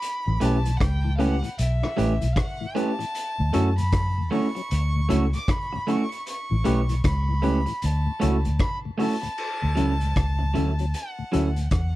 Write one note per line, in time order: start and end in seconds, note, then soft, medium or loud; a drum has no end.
0.00 0.45 B5 loud
0.00 closed hi-hat medium
0.27 0.41 A1 loud
0.27 0.33 A2 medium
0.27 0.33 E3 medium
0.40 0.79 B1 loud
0.40 0.51 G3 medium
0.40 0.56 A3 medium
0.40 0.52 A3 medium
0.40 0.56 C#4 loud
0.40 0.57 C#4 loud
0.40 0.52 C#4 medium
0.40 0.57 E4 medium
0.40 0.58 G4 medium
0.40 0.57 G4 loud
0.40 0.58 B4 loud
0.40 0.78 A5 loud
0.40 closed hi-hat medium
0.65 0.72 A2 medium
0.65 0.72 E3 medium
0.65 closed hi-hat medium
0.77 0.83 F#5 medium
0.77 kick loud
0.77 closed hi-hat medium
0.81 1.41 C#2 loud
0.81 1.15 G5 loud
0.81 cross-stick loud
1.05 1.11 A2 medium
1.05 1.11 E3 medium
1.16 1.29 G3 medium
1.16 1.34 A3 medium
1.16 1.29 A3 medium
1.16 1.29 C#4 medium
1.16 1.35 C#4 medium
1.16 1.34 C#4 loud
1.16 1.35 E4 medium
1.16 1.36 G4 medium
1.16 1.35 G4 loud
1.16 1.36 B4 loud
1.16 1.22 F5 medium
1.16 1.59 F#5 loud
1.16 closed hi-hat medium
1.43 1.50 A2 medium
1.43 1.50 E3 medium
1.43 muted clean electric guitar stroke medium
1.43 closed hi-hat soft
1.58 1.82 B1 loud
1.58 2.34 E5 loud
1.58 closed hi-hat medium
1.82 1.88 A2 medium
1.82 1.88 E3 medium
1.82 cross-stick medium
1.96 2.21 A1 medium
1.96 2.07 G3 medium
1.96 2.07 A3 medium
1.96 2.12 A3 medium
1.96 2.07 C#4 medium
1.96 2.12 C#4 loud
1.96 2.13 C#4 loud
1.96 2.13 E4 medium
1.96 2.14 G4 medium
1.96 2.13 G4 loud
1.96 2.14 B4 loud
1.96 closed hi-hat medium
2.21 2.36 B1 medium
2.21 2.27 A2 medium
2.21 2.27 E3 medium
2.21 closed hi-hat medium
2.32 2.39 F5 medium
2.32 kick loud
2.32 closed hi-hat medium
2.37 2.78 F#5 loud
2.37 cross-stick loud
2.61 2.67 A2 medium
2.61 2.67 E3 medium
2.75 2.85 G3 medium
2.75 2.90 A3 medium
2.75 2.85 A3 medium
2.75 2.91 C#4 medium
2.75 2.90 C#4 medium
2.75 2.85 C#4 medium
2.75 2.91 E4 medium
2.75 2.92 G4 medium
2.75 2.91 G4 medium
2.75 2.92 B4 loud
2.75 3.78 A5 loud
2.75 closed hi-hat medium
2.99 3.05 A2 medium
2.99 3.05 E3 medium
2.99 muted clean electric guitar stroke medium
2.99 closed hi-hat medium
3.15 closed hi-hat medium
3.39 3.45 D2 medium
3.39 3.53 D2 loud
3.39 3.45 A2 medium
3.53 4.28 F#2 medium
3.53 3.63 D3 medium
3.53 3.63 F#3 medium
3.53 3.68 A3 medium
3.53 3.69 C#4 loud
3.53 3.68 C#4 loud
3.53 3.64 C#4 medium
3.53 3.69 E4 medium
3.53 3.69 F#4 medium
3.53 3.69 F#4 loud
3.53 3.70 A4 loud
3.53 closed hi-hat medium
3.78 3.84 D2 medium
3.78 3.84 A2 medium
3.78 4.28 B5 loud
3.78 closed hi-hat medium
3.92 kick loud
3.92 cross-stick loud
3.92 closed hi-hat medium
4.18 4.23 D2 medium
4.18 4.23 A2 medium
4.31 4.41 D3 medium
4.31 4.42 F#3 medium
4.31 4.46 A3 loud
4.31 4.46 C#4 loud
4.31 4.47 C#4 medium
4.31 4.42 C#4 medium
4.31 4.47 E4 medium
4.31 4.46 F#4 loud
4.31 4.48 F#4 medium
4.31 4.48 A4 loud
4.31 5.30 C#6 loud
4.31 open hi-hat medium
4.55 4.62 F#3 medium
4.55 4.62 C#4 medium
4.55 muted clean electric guitar stroke medium
4.55 closed hi-hat soft
4.71 5.08 D2 loud
4.71 closed hi-hat medium
4.96 5.01 D2 medium
4.96 5.01 A2 medium
5.09 5.33 C#2 medium
5.09 5.19 D3 medium
5.09 5.20 F#3 medium
5.09 5.24 A3 medium
5.09 5.25 C#4 loud
5.09 5.24 C#4 medium
5.09 5.20 C#4 medium
5.09 5.25 E4 medium
5.09 5.25 F#4 loud
5.09 5.25 F#4 medium
5.09 5.25 A4 loud
5.09 closed hi-hat medium
5.33 5.40 D2 medium
5.33 5.40 A2 medium
5.33 5.52 D6 loud
5.33 closed hi-hat soft
5.48 5.92 B5 medium
5.48 kick loud
5.48 cross-stick loud
5.48 closed hi-hat medium
5.73 5.79 D2 medium
5.73 5.79 A2 medium
5.73 muted clean electric guitar stroke soft
5.87 5.97 D3 medium
5.87 5.97 F#3 medium
5.87 6.02 A3 medium
5.87 6.02 C#4 loud
5.87 5.97 C#4 medium
5.87 6.04 C#4 loud
5.87 6.04 E4 medium
5.87 6.03 F#4 medium
5.87 6.04 F#4 medium
5.87 6.04 A4 loud
5.87 6.27 C#6 loud
5.87 closed hi-hat medium
6.12 closed hi-hat medium
6.26 7.01 C#6 loud
6.26 closed hi-hat medium
6.51 6.65 A1 loud
6.51 6.57 A2 medium
6.51 6.56 E3 medium
6.64 7.03 B1 medium
6.64 6.75 G3 medium
6.64 6.80 A3 medium
6.64 6.75 A3 medium
6.64 6.81 C#4 loud
6.64 6.80 C#4 medium
6.64 6.75 C#4 medium
6.64 6.81 E4 medium
6.64 6.81 G4 medium
6.64 6.80 G4 loud
6.64 6.81 B4 loud
6.64 closed hi-hat medium
6.89 6.95 A2 medium
6.89 6.95 E3 medium
6.89 closed hi-hat medium
7.04 7.64 C#2 loud
7.04 7.85 B5 loud
7.04 kick loud
7.04 cross-stick loud
7.04 closed hi-hat loud
7.28 7.34 A2 medium
7.28 7.34 E3 medium
7.42 7.53 G3 medium
7.42 7.57 A3 medium
7.42 7.53 A3 medium
7.42 7.58 C#4 loud
7.42 7.59 C#4 medium
7.42 7.53 C#4 medium
7.42 7.59 E4 medium
7.42 7.58 G4 loud
7.42 7.59 G4 medium
7.42 7.59 B4 loud
7.42 closed hi-hat medium
7.66 7.73 A2 medium
7.66 7.73 E3 medium
7.66 muted clean electric guitar stroke medium
7.66 closed hi-hat medium
7.82 8.06 D2 loud
7.82 8.60 A5 medium
7.82 closed hi-hat medium
8.06 8.12 D2 medium
8.06 8.12 A2 medium
8.20 8.45 C#2 medium
8.20 8.31 D3 medium
8.20 8.31 F#3 medium
8.20 8.35 A3 medium
8.20 8.35 C#4 medium
8.20 8.37 C#4 loud
8.20 8.32 C#4 medium
8.20 8.37 E4 medium
8.20 8.36 F#4 loud
8.20 8.37 F#4 medium
8.20 8.37 A4 loud
8.20 closed hi-hat medium
8.45 8.52 D2 medium
8.45 8.60 D2 medium
8.45 8.52 A2 medium
8.45 closed hi-hat medium
8.59 8.78 B5 loud
8.59 kick loud
8.59 cross-stick loud
8.59 closed hi-hat medium
8.85 8.91 D2 medium
8.85 8.91 A2 medium
8.98 9.09 D3 medium
8.98 9.09 F#3 medium
8.98 9.13 A3 medium
8.98 9.14 C#4 medium
8.98 9.15 C#4 medium
8.98 9.09 C#4 medium
8.98 9.15 E4 medium
8.98 9.14 F#4 loud
8.98 9.15 F#4 medium
8.98 9.15 A4 loud
8.98 10.96 A5 loud
8.98 open hi-hat medium
9.22 9.29 D2 medium
9.22 9.29 A2 medium
9.22 muted clean electric guitar stroke medium
9.22 closed hi-hat medium
9.38 crash medium
9.62 9.68 D2 medium
9.62 9.77 D2 medium
9.62 9.68 A2 medium
9.75 10.15 C#2 medium
9.75 9.87 E3 medium
9.75 9.91 F#3 medium
9.75 9.87 F#3 medium
9.75 9.91 C#4 medium
9.75 9.93 C#4 medium
9.75 9.87 C#4 medium
9.75 9.93 E4 medium
9.75 9.92 E4 medium
9.75 9.93 F#4 medium
9.75 9.93 A4 loud
9.75 closed hi-hat medium
10.00 10.07 D2 medium
10.00 10.07 A2 medium
10.00 closed hi-hat medium
10.16 10.53 C#2 medium
10.16 kick loud
10.16 cross-stick loud
10.16 closed hi-hat medium
10.39 10.47 D2 medium
10.39 10.46 A2 medium
10.39 muted clean electric guitar stroke soft
10.54 10.93 D2 medium
10.54 10.65 E3 medium
10.54 10.69 F#3 medium
10.54 10.65 F#3 medium
10.54 10.70 C#4 medium
10.54 10.71 C#4 medium
10.54 10.65 C#4 medium
10.54 10.71 E4 medium
10.54 10.70 E4 medium
10.54 10.71 F#4 medium
10.54 10.71 A4 medium
10.54 closed hi-hat medium
10.79 10.85 F#3 medium
10.79 10.86 C#4 medium
10.79 closed hi-hat soft
10.94 11.71 F#5 medium
10.94 closed hi-hat medium
11.19 11.24 D2 medium
11.19 11.24 A2 medium
11.32 11.71 D2 medium
11.32 11.43 E3 medium
11.32 11.47 F#3 medium
11.32 11.43 F#3 medium
11.32 11.48 C#4 medium
11.32 11.43 C#4 medium
11.32 11.49 E4 medium
11.32 11.48 E4 medium
11.32 11.49 F#4 medium
11.32 11.49 A4 loud
11.32 closed hi-hat medium
11.56 11.63 D2 medium
11.56 11.63 A2 medium
11.56 closed hi-hat soft
11.71 11.96 E2 medium
11.71 11.96 F#5 medium
11.71 kick loud
11.71 cross-stick loud
11.71 closed hi-hat medium